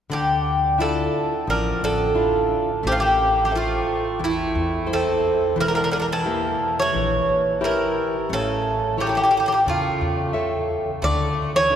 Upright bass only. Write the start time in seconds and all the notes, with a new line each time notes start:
0.11 D2
1.47 A1
1.82 A1
2.84 A1
4.20 E2
4.55 E2
5.58 E1
6.94 A#1
7.27 A#1
8.29 A1
9.66 E2
10.01 E2
11.02 D2